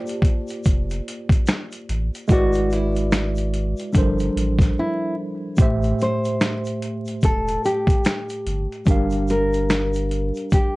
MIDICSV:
0, 0, Header, 1, 5, 480
1, 0, Start_track
1, 0, Tempo, 821918
1, 1341, Time_signature, 4, 2, 24, 8
1, 6284, End_track
2, 0, Start_track
2, 0, Title_t, "Nylon-string guitar"
2, 0, Program_c, 0, 24
2, 0, Note_on_c, 0, 67, 91
2, 510, Note_off_c, 0, 67, 0
2, 1352, Note_on_c, 0, 66, 92
2, 1593, Note_off_c, 0, 66, 0
2, 1593, Note_on_c, 0, 64, 80
2, 2763, Note_off_c, 0, 64, 0
2, 2798, Note_on_c, 0, 64, 84
2, 3006, Note_off_c, 0, 64, 0
2, 3516, Note_on_c, 0, 72, 76
2, 4205, Note_off_c, 0, 72, 0
2, 4233, Note_on_c, 0, 69, 76
2, 4443, Note_off_c, 0, 69, 0
2, 4470, Note_on_c, 0, 67, 71
2, 5162, Note_off_c, 0, 67, 0
2, 5435, Note_on_c, 0, 70, 82
2, 6124, Note_off_c, 0, 70, 0
2, 6153, Note_on_c, 0, 67, 74
2, 6284, Note_off_c, 0, 67, 0
2, 6284, End_track
3, 0, Start_track
3, 0, Title_t, "Tine electric piano"
3, 0, Program_c, 1, 4
3, 0, Control_c, 1, 64, 127
3, 0, Note_on_c, 1, 58, 79
3, 0, Note_on_c, 1, 65, 76
3, 0, Note_on_c, 1, 67, 70
3, 0, Note_on_c, 1, 72, 74
3, 0, Note_on_c, 1, 74, 77
3, 1319, Note_off_c, 1, 58, 0
3, 1323, Note_off_c, 1, 65, 0
3, 1326, Note_off_c, 1, 67, 0
3, 1330, Note_off_c, 1, 72, 0
3, 1330, Note_on_c, 1, 56, 80
3, 1334, Note_off_c, 1, 74, 0
3, 1337, Note_on_c, 1, 64, 67
3, 1345, Note_on_c, 1, 66, 78
3, 1350, Control_c, 1, 64, 0
3, 1354, Note_on_c, 1, 71, 72
3, 1361, Note_on_c, 1, 74, 83
3, 1453, Control_c, 1, 64, 127
3, 2276, Note_off_c, 1, 56, 0
3, 2280, Note_off_c, 1, 64, 0
3, 2284, Note_off_c, 1, 66, 0
3, 2288, Note_off_c, 1, 71, 0
3, 2292, Note_off_c, 1, 74, 0
3, 2292, Note_on_c, 1, 55, 66
3, 2297, Note_on_c, 1, 62, 56
3, 2305, Note_on_c, 1, 53, 56
3, 2309, Control_c, 1, 64, 0
3, 2311, Note_on_c, 1, 69, 55
3, 2317, Note_on_c, 1, 70, 57
3, 2323, Note_on_c, 1, 72, 69
3, 2416, Control_c, 1, 64, 127
3, 3237, Note_off_c, 1, 55, 0
3, 3240, Note_off_c, 1, 62, 0
3, 3244, Note_off_c, 1, 53, 0
3, 3247, Note_off_c, 1, 69, 0
3, 3250, Note_off_c, 1, 70, 0
3, 3251, Note_on_c, 1, 45, 76
3, 3253, Note_off_c, 1, 72, 0
3, 3259, Note_on_c, 1, 57, 65
3, 3267, Note_on_c, 1, 67, 69
3, 3269, Control_c, 1, 64, 0
3, 3275, Note_on_c, 1, 72, 67
3, 3282, Note_on_c, 1, 76, 80
3, 3367, Control_c, 1, 64, 127
3, 5153, Note_off_c, 1, 45, 0
3, 5156, Note_off_c, 1, 57, 0
3, 5161, Note_off_c, 1, 67, 0
3, 5164, Note_off_c, 1, 72, 0
3, 5168, Note_off_c, 1, 76, 0
3, 5173, Note_on_c, 1, 55, 64
3, 5180, Note_on_c, 1, 62, 69
3, 5187, Control_c, 1, 64, 0
3, 5188, Note_on_c, 1, 67, 65
3, 5195, Note_on_c, 1, 70, 60
3, 5203, Note_on_c, 1, 77, 85
3, 5306, Control_c, 1, 64, 127
3, 6284, Note_off_c, 1, 55, 0
3, 6284, Note_off_c, 1, 62, 0
3, 6284, Note_off_c, 1, 67, 0
3, 6284, Note_off_c, 1, 70, 0
3, 6284, Note_off_c, 1, 77, 0
3, 6284, End_track
4, 0, Start_track
4, 0, Title_t, "Sub bass"
4, 0, Program_c, 2, 38
4, 386, Note_on_c, 2, 29, 99
4, 586, Note_off_c, 2, 29, 0
4, 1105, Note_on_c, 2, 33, 93
4, 1225, Note_off_c, 2, 33, 0
4, 1340, Note_on_c, 2, 32, 100
4, 2183, Note_off_c, 2, 32, 0
4, 2306, Note_on_c, 2, 31, 102
4, 2506, Note_off_c, 2, 31, 0
4, 2544, Note_on_c, 2, 33, 101
4, 2745, Note_off_c, 2, 33, 0
4, 3261, Note_on_c, 2, 33, 88
4, 3463, Note_off_c, 2, 33, 0
4, 4225, Note_on_c, 2, 28, 95
4, 4426, Note_off_c, 2, 28, 0
4, 4943, Note_on_c, 2, 31, 95
4, 5065, Note_off_c, 2, 31, 0
4, 5181, Note_on_c, 2, 31, 105
4, 6023, Note_off_c, 2, 31, 0
4, 6284, End_track
5, 0, Start_track
5, 0, Title_t, "Drums"
5, 39, Note_on_c, 9, 82, 54
5, 55, Note_on_c, 9, 42, 49
5, 97, Note_off_c, 9, 82, 0
5, 113, Note_off_c, 9, 42, 0
5, 130, Note_on_c, 9, 36, 95
5, 145, Note_on_c, 9, 42, 57
5, 188, Note_off_c, 9, 36, 0
5, 203, Note_off_c, 9, 42, 0
5, 279, Note_on_c, 9, 82, 40
5, 295, Note_on_c, 9, 42, 43
5, 338, Note_off_c, 9, 82, 0
5, 353, Note_off_c, 9, 42, 0
5, 375, Note_on_c, 9, 82, 69
5, 384, Note_on_c, 9, 36, 89
5, 387, Note_on_c, 9, 42, 74
5, 433, Note_off_c, 9, 82, 0
5, 442, Note_off_c, 9, 36, 0
5, 445, Note_off_c, 9, 42, 0
5, 528, Note_on_c, 9, 82, 49
5, 532, Note_on_c, 9, 42, 45
5, 586, Note_off_c, 9, 82, 0
5, 591, Note_off_c, 9, 42, 0
5, 632, Note_on_c, 9, 42, 78
5, 690, Note_off_c, 9, 42, 0
5, 757, Note_on_c, 9, 36, 91
5, 764, Note_on_c, 9, 82, 52
5, 774, Note_on_c, 9, 42, 57
5, 815, Note_off_c, 9, 36, 0
5, 823, Note_off_c, 9, 82, 0
5, 832, Note_off_c, 9, 42, 0
5, 859, Note_on_c, 9, 82, 75
5, 862, Note_on_c, 9, 42, 72
5, 869, Note_on_c, 9, 38, 120
5, 874, Note_on_c, 9, 26, 93
5, 917, Note_off_c, 9, 82, 0
5, 920, Note_off_c, 9, 42, 0
5, 927, Note_off_c, 9, 38, 0
5, 932, Note_off_c, 9, 26, 0
5, 1002, Note_on_c, 9, 82, 44
5, 1009, Note_on_c, 9, 42, 53
5, 1061, Note_off_c, 9, 82, 0
5, 1067, Note_off_c, 9, 42, 0
5, 1105, Note_on_c, 9, 42, 69
5, 1164, Note_off_c, 9, 42, 0
5, 1254, Note_on_c, 9, 82, 53
5, 1255, Note_on_c, 9, 42, 50
5, 1313, Note_off_c, 9, 42, 0
5, 1313, Note_off_c, 9, 82, 0
5, 1332, Note_on_c, 9, 82, 78
5, 1338, Note_on_c, 9, 36, 118
5, 1347, Note_on_c, 9, 42, 89
5, 1390, Note_off_c, 9, 82, 0
5, 1397, Note_off_c, 9, 36, 0
5, 1405, Note_off_c, 9, 42, 0
5, 1477, Note_on_c, 9, 82, 51
5, 1491, Note_on_c, 9, 42, 40
5, 1535, Note_off_c, 9, 82, 0
5, 1550, Note_off_c, 9, 42, 0
5, 1579, Note_on_c, 9, 82, 41
5, 1592, Note_on_c, 9, 42, 56
5, 1637, Note_off_c, 9, 82, 0
5, 1650, Note_off_c, 9, 42, 0
5, 1725, Note_on_c, 9, 82, 39
5, 1731, Note_on_c, 9, 42, 43
5, 1784, Note_off_c, 9, 82, 0
5, 1789, Note_off_c, 9, 42, 0
5, 1821, Note_on_c, 9, 82, 58
5, 1824, Note_on_c, 9, 38, 108
5, 1828, Note_on_c, 9, 26, 90
5, 1830, Note_on_c, 9, 42, 79
5, 1879, Note_off_c, 9, 82, 0
5, 1882, Note_off_c, 9, 38, 0
5, 1886, Note_off_c, 9, 26, 0
5, 1889, Note_off_c, 9, 42, 0
5, 1960, Note_on_c, 9, 82, 56
5, 1975, Note_on_c, 9, 42, 46
5, 2018, Note_off_c, 9, 82, 0
5, 2033, Note_off_c, 9, 42, 0
5, 2065, Note_on_c, 9, 42, 59
5, 2124, Note_off_c, 9, 42, 0
5, 2200, Note_on_c, 9, 82, 43
5, 2216, Note_on_c, 9, 42, 41
5, 2259, Note_off_c, 9, 82, 0
5, 2274, Note_off_c, 9, 42, 0
5, 2295, Note_on_c, 9, 82, 65
5, 2304, Note_on_c, 9, 36, 89
5, 2307, Note_on_c, 9, 42, 77
5, 2353, Note_off_c, 9, 82, 0
5, 2362, Note_off_c, 9, 36, 0
5, 2365, Note_off_c, 9, 42, 0
5, 2446, Note_on_c, 9, 82, 52
5, 2453, Note_on_c, 9, 42, 45
5, 2505, Note_off_c, 9, 82, 0
5, 2511, Note_off_c, 9, 42, 0
5, 2553, Note_on_c, 9, 42, 78
5, 2611, Note_off_c, 9, 42, 0
5, 2677, Note_on_c, 9, 36, 100
5, 2682, Note_on_c, 9, 82, 50
5, 2693, Note_on_c, 9, 38, 38
5, 2695, Note_on_c, 9, 42, 56
5, 2735, Note_off_c, 9, 36, 0
5, 2740, Note_off_c, 9, 82, 0
5, 2751, Note_off_c, 9, 38, 0
5, 2754, Note_off_c, 9, 42, 0
5, 3251, Note_on_c, 9, 82, 78
5, 3259, Note_on_c, 9, 36, 112
5, 3268, Note_on_c, 9, 42, 88
5, 3309, Note_off_c, 9, 82, 0
5, 3317, Note_off_c, 9, 36, 0
5, 3326, Note_off_c, 9, 42, 0
5, 3396, Note_on_c, 9, 82, 47
5, 3410, Note_on_c, 9, 42, 36
5, 3455, Note_off_c, 9, 82, 0
5, 3469, Note_off_c, 9, 42, 0
5, 3500, Note_on_c, 9, 82, 43
5, 3512, Note_on_c, 9, 42, 51
5, 3558, Note_off_c, 9, 82, 0
5, 3571, Note_off_c, 9, 42, 0
5, 3646, Note_on_c, 9, 82, 43
5, 3652, Note_on_c, 9, 42, 40
5, 3705, Note_off_c, 9, 82, 0
5, 3710, Note_off_c, 9, 42, 0
5, 3743, Note_on_c, 9, 82, 54
5, 3744, Note_on_c, 9, 38, 99
5, 3748, Note_on_c, 9, 26, 82
5, 3750, Note_on_c, 9, 42, 70
5, 3801, Note_off_c, 9, 82, 0
5, 3802, Note_off_c, 9, 38, 0
5, 3807, Note_off_c, 9, 26, 0
5, 3809, Note_off_c, 9, 42, 0
5, 3882, Note_on_c, 9, 82, 51
5, 3895, Note_on_c, 9, 42, 44
5, 3940, Note_off_c, 9, 82, 0
5, 3953, Note_off_c, 9, 42, 0
5, 3985, Note_on_c, 9, 42, 55
5, 4043, Note_off_c, 9, 42, 0
5, 4122, Note_on_c, 9, 82, 37
5, 4135, Note_on_c, 9, 42, 38
5, 4180, Note_off_c, 9, 82, 0
5, 4193, Note_off_c, 9, 42, 0
5, 4216, Note_on_c, 9, 82, 68
5, 4223, Note_on_c, 9, 36, 78
5, 4226, Note_on_c, 9, 42, 74
5, 4275, Note_off_c, 9, 82, 0
5, 4282, Note_off_c, 9, 36, 0
5, 4284, Note_off_c, 9, 42, 0
5, 4368, Note_on_c, 9, 82, 49
5, 4372, Note_on_c, 9, 42, 43
5, 4427, Note_off_c, 9, 82, 0
5, 4431, Note_off_c, 9, 42, 0
5, 4466, Note_on_c, 9, 82, 45
5, 4472, Note_on_c, 9, 42, 77
5, 4524, Note_off_c, 9, 82, 0
5, 4530, Note_off_c, 9, 42, 0
5, 4597, Note_on_c, 9, 36, 89
5, 4604, Note_on_c, 9, 82, 47
5, 4613, Note_on_c, 9, 42, 51
5, 4655, Note_off_c, 9, 36, 0
5, 4663, Note_off_c, 9, 82, 0
5, 4672, Note_off_c, 9, 42, 0
5, 4699, Note_on_c, 9, 82, 69
5, 4701, Note_on_c, 9, 42, 73
5, 4708, Note_on_c, 9, 38, 115
5, 4712, Note_on_c, 9, 26, 91
5, 4758, Note_off_c, 9, 82, 0
5, 4759, Note_off_c, 9, 42, 0
5, 4766, Note_off_c, 9, 38, 0
5, 4771, Note_off_c, 9, 26, 0
5, 4843, Note_on_c, 9, 82, 45
5, 4849, Note_on_c, 9, 42, 52
5, 4901, Note_off_c, 9, 82, 0
5, 4907, Note_off_c, 9, 42, 0
5, 4946, Note_on_c, 9, 42, 63
5, 5004, Note_off_c, 9, 42, 0
5, 5095, Note_on_c, 9, 82, 50
5, 5096, Note_on_c, 9, 42, 46
5, 5154, Note_off_c, 9, 42, 0
5, 5154, Note_off_c, 9, 82, 0
5, 5172, Note_on_c, 9, 82, 79
5, 5179, Note_on_c, 9, 36, 114
5, 5187, Note_on_c, 9, 42, 91
5, 5230, Note_off_c, 9, 82, 0
5, 5237, Note_off_c, 9, 36, 0
5, 5246, Note_off_c, 9, 42, 0
5, 5318, Note_on_c, 9, 82, 48
5, 5330, Note_on_c, 9, 42, 35
5, 5376, Note_off_c, 9, 82, 0
5, 5389, Note_off_c, 9, 42, 0
5, 5419, Note_on_c, 9, 82, 44
5, 5432, Note_on_c, 9, 42, 50
5, 5478, Note_off_c, 9, 82, 0
5, 5491, Note_off_c, 9, 42, 0
5, 5566, Note_on_c, 9, 82, 43
5, 5572, Note_on_c, 9, 42, 37
5, 5624, Note_off_c, 9, 82, 0
5, 5630, Note_off_c, 9, 42, 0
5, 5663, Note_on_c, 9, 82, 54
5, 5665, Note_on_c, 9, 38, 107
5, 5669, Note_on_c, 9, 26, 84
5, 5671, Note_on_c, 9, 42, 72
5, 5722, Note_off_c, 9, 82, 0
5, 5723, Note_off_c, 9, 38, 0
5, 5728, Note_off_c, 9, 26, 0
5, 5730, Note_off_c, 9, 42, 0
5, 5802, Note_on_c, 9, 82, 50
5, 5817, Note_on_c, 9, 42, 46
5, 5860, Note_off_c, 9, 82, 0
5, 5875, Note_off_c, 9, 42, 0
5, 5906, Note_on_c, 9, 42, 53
5, 5964, Note_off_c, 9, 42, 0
5, 6042, Note_on_c, 9, 82, 42
5, 6058, Note_on_c, 9, 42, 37
5, 6100, Note_off_c, 9, 82, 0
5, 6116, Note_off_c, 9, 42, 0
5, 6136, Note_on_c, 9, 82, 65
5, 6145, Note_on_c, 9, 36, 91
5, 6148, Note_on_c, 9, 42, 75
5, 6195, Note_off_c, 9, 82, 0
5, 6203, Note_off_c, 9, 36, 0
5, 6207, Note_off_c, 9, 42, 0
5, 6284, End_track
0, 0, End_of_file